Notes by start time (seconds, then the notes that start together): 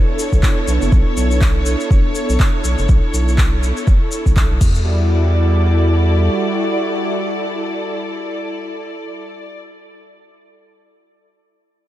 Already playing: B3 D4 E4 A4 C#5
0.19 cabasa
0.32 B1, kick, cabasa
0.43 kick, clap, cabasa
0.68 B1, cabasa
0.82 F#1, cabasa
0.92 B1, kick, cabasa
1.17 B1, cabasa
1.31 cabasa
1.41 kick, clap, cabasa
1.66 cabasa
1.80 cabasa
1.91 F#1, kick, cabasa
2.15 cabasa
2.29 B1, cabasa
2.40 kick, clap, cabasa
2.64 B1, cabasa
2.78 F#1, cabasa
2.89 B1, kick, cabasa
3.14 B1, cabasa
3.28 cabasa
3.38 kick, clap, cabasa
3.63 cabasa
3.77 cabasa
3.87 F#1, kick, cabasa
4.12 cabasa
4.26 B1, kick, cabasa
4.36 B1, kick, clap, cabasa
4.51 B1
4.61 E2 G3 E4 F#4 D5, kick, crash, cabasa
4.70 A4
4.75 cabasa
5.02 D5